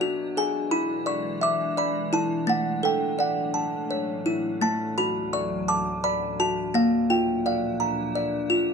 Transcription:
Already playing: B2 F#3 D4 D5 B5
0.01 F#4
0.37 E3 G#3 D4 G#4 G#5
0.71 E4 B5
1.06 D5 C#6
1.41 E5 D6
1.77 D5 B5
2.13 E4 A5
2.47 A2 F#3 A3 D4 F#5
2.83 A4 G5
3.19 D5 F#5
3.54 E3 C#4 A5
3.91 C#5
4.26 E4
4.61 D2 F#3 A3 A5
4.98 F#4 B5
5.33 D5 C#6
5.68 A5 D6
6.04 D5 B5
6.40 F#4 A5
6.74 A#2 F3 A#3 D4 F5
7.10 F4 G5
7.46 D5 F5
7.80 A#5
8.15 D5
8.50 F4

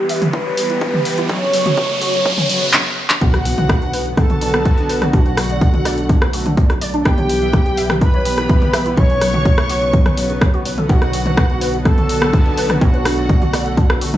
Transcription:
Already playing: B1 E3 G3 B3 G4, riser
0.09 E5, open hi-hat
0.22 closed hi-hat, mid tom
0.33 E4 B4, kick, closed hi-hat
0.46 C#5
0.57 E3 B3 G4, open hi-hat
0.70 E3 B3 E4 G4, closed hi-hat
0.81 E5, kick, closed hi-hat
0.94 G4, mid tom
1.05 E5, open hi-hat
1.18 E4, closed hi-hat
1.29 B1 C#3 F#3 C#5, kick, closed hi-hat
1.42 C#4
1.53 F#3, open hi-hat
1.66 F#4, closed hi-hat, mid tom
1.77 F#4, kick, closed hi-hat
1.90 A3
2.01 F#4, open hi-hat
2.14 closed hi-hat
2.25 F#3, kick, closed hi-hat
2.38 C#4, mid tom
2.49 C#3 F#3 B3 F#4, open hi-hat
2.62 C#3 B3 F#4, closed hi-hat
2.73 clap
3.10 clap
3.21 B1 D3 F#3 B3 F#4 F#5, kick, closed hi-hat, impact
3.34 F#4, cross-stick, closed hi-hat
3.45 B3, open hi-hat
3.58 B4, closed hi-hat, mid tom
3.69 B4, kick, cross-stick, closed hi-hat
3.82 D4, closed hi-hat
3.93 B4, open hi-hat
4.06 closed hi-hat
4.17 B3 A4 A5, kick, cross-stick, closed hi-hat
4.30 F#4, closed hi-hat, mid tom
4.41 D3 B3 D4 F#4, open hi-hat
4.54 D3 B3 F#4, cross-stick, closed hi-hat
4.65 B4, kick, closed hi-hat
4.78 D4, closed hi-hat
4.89 B4, open hi-hat
5.02 B3, cross-stick, closed hi-hat, mid tom
5.13 B1 A3 D4 F#4 F#5, kick, closed hi-hat
5.26 B4, closed hi-hat
5.37 D4, cross-stick, open hi-hat
5.50 D5, closed hi-hat
5.61 D5, kick, closed hi-hat
5.74 F#4, closed hi-hat, mid tom
5.85 D5, cross-stick, open hi-hat
5.98 closed hi-hat
6.09 D4, kick, closed hi-hat
6.22 B4, cross-stick, closed hi-hat
6.33 D3 A3 F#4, open hi-hat
6.46 D4, closed hi-hat, mid tom
6.57 D5, kick, closed hi-hat
6.70 F#4, cross-stick, closed hi-hat
6.81 D5, open hi-hat
6.94 D4
7.05 B1 E3 G3 B3 E4 G4 G5, kick, cross-stick, closed hi-hat
7.18 C#5, closed hi-hat, mid tom
7.29 E4, open hi-hat
7.42 E5, closed hi-hat
7.53 E5, kick, cross-stick, closed hi-hat
7.66 G4, closed hi-hat
7.77 E5, open hi-hat
7.90 cross-stick, closed hi-hat, mid tom
8.01 E4 B4 B5, kick, closed hi-hat
8.14 C#5, closed hi-hat
8.25 E3 B3 G4, open hi-hat
8.38 E3 B3 E4 G4, cross-stick, closed hi-hat
8.49 E5, kick, closed hi-hat
8.62 G4, closed hi-hat, mid tom
8.73 E5, cross-stick, open hi-hat
8.86 E4, closed hi-hat
8.97 B1 C#3 F#3 C#5 C#6, kick, closed hi-hat
9.10 C#4, closed hi-hat
9.21 F#3, cross-stick, open hi-hat
9.34 F#4, mid tom
9.45 F#4, kick, closed hi-hat
9.58 A3, cross-stick, closed hi-hat
9.69 F#4, open hi-hat
9.82 closed hi-hat
9.93 F#3, kick, closed hi-hat
10.06 C#4, cross-stick, closed hi-hat, mid tom
10.17 C#3 F#3 B3 F#4, open hi-hat
10.30 C#3, closed hi-hat
10.41 F#3, kick, cross-stick, closed hi-hat
10.54 F#4, closed hi-hat
10.65 F#3, open hi-hat
10.78 A4, closed hi-hat, mid tom
10.89 B1 D3 B3 F#4 F#5, kick, closed hi-hat
11.02 F#4, cross-stick, closed hi-hat
11.13 B3, open hi-hat
11.26 B4, closed hi-hat, mid tom
11.37 B4, kick, cross-stick, closed hi-hat
11.50 D4, closed hi-hat
11.61 B4, open hi-hat
11.74 closed hi-hat
11.85 B3 A4 A5, kick, cross-stick, closed hi-hat
11.98 F#4, closed hi-hat, mid tom
12.09 D3 B3 D4 F#4, open hi-hat
12.22 D3 B3 F#4, cross-stick
12.33 B4, kick, closed hi-hat
12.46 D4, closed hi-hat
12.57 B4, open hi-hat
12.70 B3, cross-stick, mid tom
12.81 B1 A3 D4 F#4 F#5, kick, closed hi-hat
12.94 B4, closed hi-hat
13.05 D4, cross-stick, open hi-hat
13.18 D5, closed hi-hat
13.29 D5, kick, closed hi-hat
13.42 F#4, closed hi-hat, mid tom
13.53 D5, cross-stick, open hi-hat
13.66 closed hi-hat
13.77 D4, kick, closed hi-hat
13.90 B4, cross-stick, closed hi-hat
14.01 D3 A3 F#4, open hi-hat
14.14 D4, closed hi-hat, mid tom

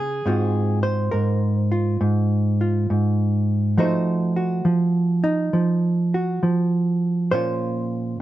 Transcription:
Already playing: C#3 B3 G#4 A#4
0.26 G#2 C4 F4 F#4
0.83 C5
1.11 G#2 A#4
1.72 F4
2.01 G#2
2.61 F4
2.90 G#2
3.78 F3 A3 D#4 F#4 C5
4.36 F#4
4.65 F3
5.24 D#4
5.53 F3
6.14 F#4
6.43 F3
7.31 A#2 A#3 C#4 F4 C5

